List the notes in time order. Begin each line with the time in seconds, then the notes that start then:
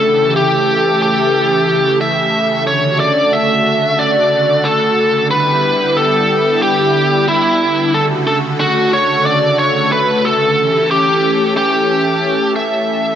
Already playing: C#3 A3 A4
0.03 E3 G4
0.36 G4
1.02 G4
2.01 E5
2.67 D3 A3 F#4 C#5
3.00 D5
3.33 E5
3.99 D5
4.65 A4
5.30 G3 B3 E4 G4 B4
5.97 A4
6.62 G4
7.28 E4
7.94 C#3 A3 F#4 A4
8.27 A4
8.60 F#4
8.93 C#5
9.26 D5
9.59 C#5
9.92 B4
10.25 A4
10.58 E3 C#4 G4 A4
10.91 G4
11.57 G4
12.56 E5